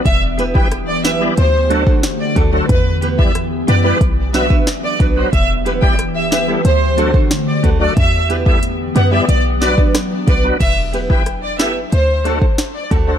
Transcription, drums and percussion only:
0.06 kick, closed hi-hat
0.39 closed hi-hat
0.55 kick
0.72 cross-stick, closed hi-hat
1.04 snare, closed hi-hat
1.37 closed hi-hat
1.71 closed hi-hat
1.87 kick
2.03 snare, closed hi-hat
2.36 kick, closed hi-hat
2.69 kick, closed hi-hat
3.02 closed hi-hat
3.19 kick
3.35 cross-stick, closed hi-hat
3.68 closed hi-hat
4.01 kick, closed hi-hat
4.34 snare, closed hi-hat
4.50 kick
4.67 snare, closed hi-hat
5.00 kick, closed hi-hat
5.33 kick, closed hi-hat
5.66 closed hi-hat
5.82 kick
5.99 cross-stick, closed hi-hat
6.32 snare, closed hi-hat
6.65 closed hi-hat
6.98 closed hi-hat
7.14 kick
7.31 snare, closed hi-hat
7.64 kick, closed hi-hat
7.97 kick, closed hi-hat
8.30 closed hi-hat
8.46 kick
8.63 closed hi-hat
8.96 closed hi-hat
9.29 closed hi-hat
9.62 snare, closed hi-hat
9.78 kick
9.95 cross-stick, snare, closed hi-hat
10.28 kick, closed hi-hat
10.61 kick, closed hi-hat, crash
10.94 closed hi-hat
11.10 kick
11.26 cross-stick, closed hi-hat
11.59 snare, closed hi-hat
11.92 closed hi-hat
12.25 closed hi-hat
12.42 kick
12.58 snare, closed hi-hat
12.91 kick, closed hi-hat

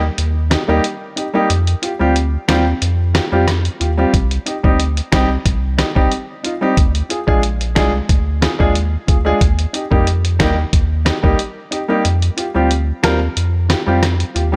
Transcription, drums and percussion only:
0.18 closed hi-hat
0.51 cross-stick, snare, closed hi-hat
0.84 closed hi-hat
1.17 closed hi-hat
1.50 closed hi-hat
1.67 closed hi-hat
1.83 closed hi-hat
2.16 closed hi-hat
2.49 cross-stick, snare, closed hi-hat
2.82 closed hi-hat
3.15 cross-stick, snare, closed hi-hat
3.48 cross-stick, snare, closed hi-hat
3.65 closed hi-hat
3.81 closed hi-hat
4.14 kick, closed hi-hat
4.31 closed hi-hat
4.46 closed hi-hat
4.64 kick
4.80 closed hi-hat
4.97 closed hi-hat
5.12 kick, cross-stick, snare, closed hi-hat
5.46 kick, closed hi-hat
5.79 cross-stick, snare, closed hi-hat
5.96 kick
6.12 closed hi-hat
6.44 closed hi-hat
6.77 kick, closed hi-hat
6.95 closed hi-hat
7.10 closed hi-hat
7.28 kick
7.43 closed hi-hat
7.61 closed hi-hat
7.76 kick, cross-stick, snare, closed hi-hat
8.09 kick, closed hi-hat
8.42 cross-stick, snare, closed hi-hat
8.60 kick
8.75 closed hi-hat
9.08 kick, closed hi-hat
9.41 kick, closed hi-hat
9.59 closed hi-hat
9.74 closed hi-hat
9.92 kick
10.07 closed hi-hat
10.25 closed hi-hat
10.40 kick, cross-stick, snare, closed hi-hat
10.73 kick, closed hi-hat
11.06 cross-stick, snare, closed hi-hat
11.24 kick
11.39 closed hi-hat
11.72 closed hi-hat
12.05 closed hi-hat
12.22 closed hi-hat
12.38 closed hi-hat
12.71 closed hi-hat
13.04 cross-stick, snare, closed hi-hat
13.37 closed hi-hat
13.70 cross-stick, snare, closed hi-hat
14.03 cross-stick, snare, closed hi-hat
14.20 closed hi-hat
14.36 closed hi-hat

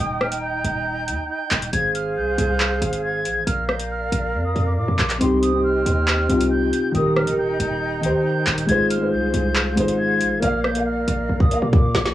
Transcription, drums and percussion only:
0.21 cross-stick
0.32 closed hi-hat
0.64 closed hi-hat
1.08 closed hi-hat
1.51 clap, closed hi-hat
1.62 closed hi-hat
1.73 closed hi-hat
1.95 closed hi-hat
2.38 closed hi-hat
2.60 clap
2.82 closed hi-hat
2.93 closed hi-hat
3.25 closed hi-hat
3.47 closed hi-hat
3.69 cross-stick
3.79 closed hi-hat
4.12 closed hi-hat
4.56 closed hi-hat
4.99 clap, closed hi-hat
5.10 clap, closed hi-hat
5.21 closed hi-hat
5.43 closed hi-hat
5.86 closed hi-hat
6.08 clap
6.30 closed hi-hat
6.41 closed hi-hat
6.73 closed hi-hat
6.95 closed hi-hat
7.16 cross-stick
7.27 closed hi-hat
7.60 closed hi-hat
8.03 closed hi-hat
8.47 clap, closed hi-hat
8.58 closed hi-hat
8.69 closed hi-hat
8.90 closed hi-hat
9.34 closed hi-hat
9.56 clap
9.77 closed hi-hat
9.88 closed hi-hat
10.21 closed hi-hat
10.43 closed hi-hat
10.64 cross-stick
10.75 closed hi-hat
11.08 closed hi-hat
11.40 kick
11.51 closed hi-hat
11.73 kick
11.95 snare, closed hi-hat
12.06 snare, closed hi-hat

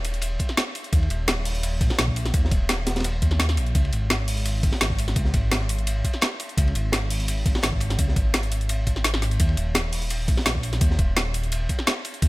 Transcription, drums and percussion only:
0.05 open hi-hat, ride
0.14 closed hi-hat
0.21 closed hi-hat, ride
0.39 kick, closed hi-hat, ride
0.49 snare, ride
0.57 snare, closed hi-hat, ride
0.75 open hi-hat, ride
0.84 closed hi-hat
0.93 kick, closed hi-hat, ride
1.03 ride
1.10 closed hi-hat, ride
1.28 snare, closed hi-hat, ride
1.45 open hi-hat
1.55 closed hi-hat
1.63 closed hi-hat, ride
1.81 kick, closed hi-hat, ride
1.90 snare
1.98 snare, closed hi-hat, ride
2.08 kick
2.16 open hi-hat, ride
2.25 snare, closed hi-hat
2.34 kick, closed hi-hat, ride
2.45 snare
2.51 kick, closed hi-hat, ride
2.69 snare, closed hi-hat, ride
2.87 snare, open hi-hat, ride
2.96 snare, closed hi-hat, ride
3.00 snare, ride
3.04 closed hi-hat, ride
3.22 kick, closed hi-hat, ride
3.31 snare, ride
3.39 snare, closed hi-hat, ride
3.49 snare, closed hi-hat
3.57 open hi-hat, ride
3.67 closed hi-hat
3.75 kick, closed hi-hat, ride
3.85 ride
3.93 closed hi-hat, ride
4.10 snare, closed hi-hat, ride
4.28 open hi-hat
4.37 closed hi-hat
4.45 closed hi-hat, ride
4.63 kick, closed hi-hat, ride
4.72 snare
4.81 snare, closed hi-hat, ride
4.90 kick
4.99 open hi-hat, ride
5.08 snare, closed hi-hat
5.16 kick, closed hi-hat, ride
5.25 snare
5.34 kick, closed hi-hat, ride
5.52 snare, closed hi-hat, ride
5.69 open hi-hat, ride
5.79 closed hi-hat
5.87 closed hi-hat, ride
6.04 kick, closed hi-hat, ride
6.13 snare, ride
6.21 snare, closed hi-hat, ride
6.40 open hi-hat, ride
6.49 closed hi-hat
6.57 kick, closed hi-hat, ride
6.67 ride
6.75 closed hi-hat, ride
6.92 snare, closed hi-hat, ride
7.10 open hi-hat
7.20 closed hi-hat
7.28 closed hi-hat, ride
7.46 kick, closed hi-hat, ride
7.55 snare
7.62 snare, closed hi-hat, ride
7.73 kick
7.80 open hi-hat, ride
7.89 snare, closed hi-hat
7.99 kick, closed hi-hat, ride
8.08 snare
8.16 kick, closed hi-hat, ride
8.34 snare, closed hi-hat, ride
8.43 closed hi-hat
8.52 open hi-hat, ride
8.61 closed hi-hat
8.69 closed hi-hat, ride
8.87 kick, closed hi-hat, ride
8.96 snare, ride
9.04 snare, closed hi-hat, ride
9.14 snare, ride
9.22 snare, open hi-hat, ride
9.31 closed hi-hat, ride
9.40 kick, closed hi-hat, ride
9.49 ride
9.57 closed hi-hat, ride
9.75 snare, closed hi-hat, ride
9.92 open hi-hat
10.02 closed hi-hat
10.10 closed hi-hat, ride
10.28 kick, closed hi-hat, ride
10.37 snare
10.46 snare, closed hi-hat, ride
10.55 kick
10.63 open hi-hat, ride
10.73 snare, closed hi-hat
10.81 kick, closed hi-hat, ride
10.91 snare
10.99 kick, closed hi-hat, ride
11.16 snare, closed hi-hat, ride
11.34 open hi-hat, ride
11.44 closed hi-hat
11.52 closed hi-hat, ride
11.69 kick, closed hi-hat, ride
11.79 snare, ride
11.87 snare, closed hi-hat, ride
12.05 open hi-hat, ride
12.14 closed hi-hat
12.22 kick, closed hi-hat, ride

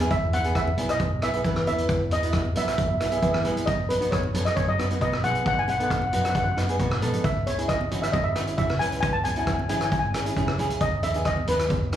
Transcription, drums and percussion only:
0.00 high conga
0.10 kick, closed hi-hat
0.33 closed hi-hat, high conga, low conga
0.44 closed hi-hat
0.55 kick, cross-stick, closed hi-hat
0.68 high conga
0.78 closed hi-hat, low conga
0.89 cross-stick, closed hi-hat
0.99 kick, closed hi-hat, high conga
1.22 cross-stick, closed hi-hat
1.33 closed hi-hat
1.44 kick, closed hi-hat
1.56 cross-stick, high conga
1.67 closed hi-hat, low conga
1.78 closed hi-hat
1.89 kick, closed hi-hat
2.11 closed hi-hat, high conga, low conga
2.23 closed hi-hat
2.33 kick, cross-stick, closed hi-hat
2.45 high conga
2.56 closed hi-hat, low conga
2.68 cross-stick, closed hi-hat
2.78 kick, closed hi-hat, high conga
3.00 cross-stick, closed hi-hat
3.12 closed hi-hat
3.22 kick, closed hi-hat
3.34 cross-stick, high conga
3.45 closed hi-hat, low conga
3.57 closed hi-hat
3.67 kick, closed hi-hat
3.90 closed hi-hat, high conga, low conga
4.02 closed hi-hat
4.12 kick, cross-stick, closed hi-hat
4.23 high conga
4.34 closed hi-hat, low conga
4.46 cross-stick, closed hi-hat
4.57 kick, closed hi-hat, high conga
4.79 cross-stick, closed hi-hat
4.90 closed hi-hat
5.01 kick, closed hi-hat
5.12 cross-stick, high conga
5.24 closed hi-hat, low conga
5.35 closed hi-hat
5.46 kick, closed hi-hat
5.68 closed hi-hat, high conga
5.80 closed hi-hat
5.90 kick, cross-stick, closed hi-hat
6.02 high conga
6.13 closed hi-hat, low conga
6.25 cross-stick, closed hi-hat
6.35 kick, closed hi-hat
6.58 cross-stick, closed hi-hat
6.69 closed hi-hat
6.79 kick, closed hi-hat
6.91 cross-stick, high conga
7.02 closed hi-hat, low conga
7.13 closed hi-hat, low conga
7.24 kick, closed hi-hat
7.47 closed hi-hat, high conga
7.58 closed hi-hat
7.69 kick, cross-stick, closed hi-hat
7.81 high conga
7.91 closed hi-hat, low conga
8.03 cross-stick, closed hi-hat
8.13 kick, closed hi-hat, high conga
8.36 cross-stick, closed hi-hat
8.47 closed hi-hat
8.58 kick, closed hi-hat
8.70 cross-stick, high conga
8.81 closed hi-hat, low conga
8.92 closed hi-hat
9.03 kick, closed hi-hat
9.25 closed hi-hat, high conga, low conga
9.36 closed hi-hat
9.47 kick, cross-stick, closed hi-hat
9.59 high conga
9.69 closed hi-hat, low conga
9.81 cross-stick, closed hi-hat
9.92 kick, closed hi-hat, high conga
10.14 cross-stick, closed hi-hat
10.26 closed hi-hat
10.37 kick, closed hi-hat
10.48 cross-stick, high conga
10.58 closed hi-hat, low conga
10.70 closed hi-hat
10.80 kick, closed hi-hat
11.03 closed hi-hat, high conga, low conga
11.14 closed hi-hat
11.25 kick, cross-stick, closed hi-hat
11.37 high conga
11.47 closed hi-hat, low conga
11.59 cross-stick, closed hi-hat
11.70 kick, closed hi-hat, high conga
11.93 cross-stick, closed hi-hat

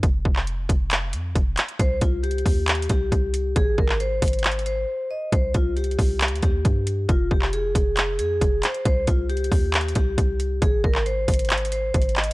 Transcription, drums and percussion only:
0.03 kick, closed hi-hat
0.25 kick
0.36 clap
0.47 closed hi-hat
0.69 kick, closed hi-hat
0.91 clap, closed hi-hat
1.13 closed hi-hat
1.35 kick, closed hi-hat
1.57 clap, closed hi-hat
1.68 closed hi-hat
1.79 kick, closed hi-hat
2.01 kick, closed hi-hat
2.24 closed hi-hat
2.31 closed hi-hat
2.38 closed hi-hat
2.46 kick, open hi-hat
2.68 clap, closed hi-hat
2.75 closed hi-hat
2.82 closed hi-hat
2.89 kick, closed hi-hat
3.12 kick, closed hi-hat
3.34 closed hi-hat
3.56 kick, closed hi-hat
3.78 kick
3.89 clap
4.00 closed hi-hat
4.22 kick, closed hi-hat, open hi-hat
4.28 closed hi-hat
4.33 closed hi-hat
4.39 closed hi-hat
4.44 clap, closed hi-hat
4.52 closed hi-hat
4.59 closed hi-hat
4.66 closed hi-hat
5.32 kick, closed hi-hat
5.54 kick, closed hi-hat
5.77 closed hi-hat
5.84 closed hi-hat
5.91 closed hi-hat
5.99 kick, open hi-hat
6.21 clap, closed hi-hat
6.28 closed hi-hat
6.36 closed hi-hat
6.42 kick, closed hi-hat
6.65 kick, closed hi-hat
6.87 closed hi-hat
7.09 kick, closed hi-hat
7.31 kick
7.42 clap
7.53 closed hi-hat
7.75 kick, closed hi-hat
7.97 clap, closed hi-hat
8.19 closed hi-hat
8.41 kick, closed hi-hat
8.63 clap, closed hi-hat
8.74 closed hi-hat
8.85 kick, closed hi-hat
9.07 kick, closed hi-hat
9.30 closed hi-hat
9.37 closed hi-hat
9.44 closed hi-hat
9.52 kick, open hi-hat
9.74 clap, closed hi-hat
9.81 closed hi-hat
9.88 closed hi-hat
9.95 kick, closed hi-hat
10.18 kick, closed hi-hat
10.40 closed hi-hat
10.62 kick, closed hi-hat
10.84 kick
10.95 clap
11.06 closed hi-hat
11.28 kick, closed hi-hat, open hi-hat
11.34 closed hi-hat
11.39 closed hi-hat
11.45 closed hi-hat
11.50 clap, closed hi-hat
11.58 closed hi-hat
11.65 closed hi-hat
11.72 closed hi-hat
11.94 kick, closed hi-hat
12.02 closed hi-hat
12.09 closed hi-hat
12.16 clap, closed hi-hat
12.24 closed hi-hat

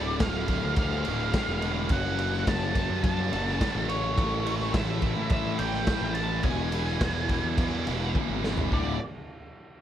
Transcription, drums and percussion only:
0.20 kick, snare, ride
0.48 kick, ride
0.76 kick, ride
1.05 ride
1.33 kick, snare, ride
1.62 ride
1.89 kick, ride
2.19 ride
2.33 snare
2.47 kick, snare, ride
2.75 kick, snare, ride
3.04 kick, ride
3.33 ride
3.47 snare
3.61 kick, snare, ride
3.89 ride
4.18 kick, ride
4.46 ride
4.60 snare
4.74 kick, snare, ride
5.02 kick, ride
5.30 kick, ride
5.59 ride
5.73 snare
5.87 kick, snare, ride
6.15 ride
6.43 kick, ride
6.72 ride
6.87 snare
7.01 kick, snare, ride
7.29 kick, snare, ride
7.58 kick, ride
7.87 ride
8.15 kick, high tom
8.44 snare
8.57 floor tom
8.72 kick

